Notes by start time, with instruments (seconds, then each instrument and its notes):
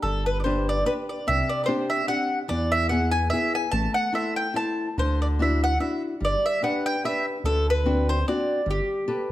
0.02 analog synth bass G1, nylon-string guitar G3, mandolin A4
0.26 mandolin B4
0.40 mandolin D5
0.44 nylon-string guitar D4 G4 B4, mandolin C5
0.69 mandolin D5
0.85 nylon-string guitar D4 G4 B4, mandolin B4
1.09 mandolin D5
1.27 analog synth bass C2, nylon-string guitar C3, mandolin E5
1.49 mandolin D5
1.64 mandolin C5 D5
1.68 nylon-string guitar C4 D4 G4
1.90 mandolin E5
2.08 nylon-string guitar C4 D4 G4, mandolin F#5
2.48 analog synth bass E2, nylon-string guitar E3, mandolin D5
2.72 mandolin E5
2.89 nylon-string guitar B3 E4 G#4, mandolin F#5
3.11 mandolin G#5
3.30 nylon-string guitar B3 E4 G#4, mandolin E5
3.55 mandolin G#5
3.71 analog synth bass A1, nylon-string guitar A3, mandolin A5
3.94 mandolin F#5
4.12 nylon-string guitar E4 A4 C5, mandolin E5
4.36 mandolin G5
4.54 nylon-string guitar E4 A4 C5, mandolin A5
4.98 analog synth bass D2, nylon-string guitar D3, mandolin C5
5.22 mandolin D5
5.39 nylon-string guitar D4 E4 F#4, mandolin E5
5.64 mandolin F#5
5.80 nylon-string guitar D4 E4 F#4, mandolin E5
6.20 analog synth bass G1, nylon-string guitar G3
6.25 mandolin D5
6.46 mandolin E5
6.62 nylon-string guitar D4 G4 B4, mandolin F#5
6.86 mandolin G5
7.04 nylon-string guitar D4 G4 B4, mandolin E5
7.44 analog synth bass D2, nylon-string guitar D3, mandolin A4
7.70 mandolin B4
7.85 nylon-string guitar C4 D4 F#4
8.09 mandolin C5
8.28 nylon-string guitar C4 D4 F#4, mandolin D5
8.66 analog synth bass G1, nylon-string guitar G3
8.71 mandolin G4
9.08 nylon-string guitar G4 A4 B4